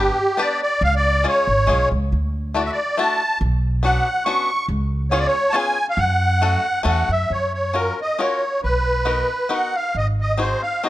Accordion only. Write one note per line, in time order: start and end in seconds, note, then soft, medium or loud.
0.00 0.40 G4 medium
0.39 0.61 D5 medium
0.62 0.83 D5 medium
0.84 0.94 F5 medium
0.96 1.27 D5 medium
1.28 1.89 C#5 medium
2.56 2.63 D5 medium
2.65 2.71 E5 medium
2.72 2.97 D5 medium
2.99 3.39 A5 medium
3.84 4.24 F#5 medium
4.25 4.66 C#6 medium
5.11 5.20 C#5 medium
5.19 5.27 D5 medium
5.26 5.56 C#5 medium
5.50 5.56 A5 medium
5.56 5.87 G#5 medium
5.90 6.00 F5 medium
5.99 6.82 F#5 medium
6.88 7.11 F#5 medium
7.12 7.32 E5 medium
7.32 7.52 C#5 medium
7.54 7.76 C#5 soft
7.76 8.00 A#4 medium
8.02 8.22 D#5 medium
8.20 8.61 C#5 medium
8.64 9.54 B4 medium
9.53 9.76 F#5 medium
9.75 9.96 F5 medium
9.97 10.07 D#5 medium
10.21 10.40 D#5 medium
10.41 10.62 C5 medium
10.62 10.84 F5 medium
10.84 10.89 D#5 medium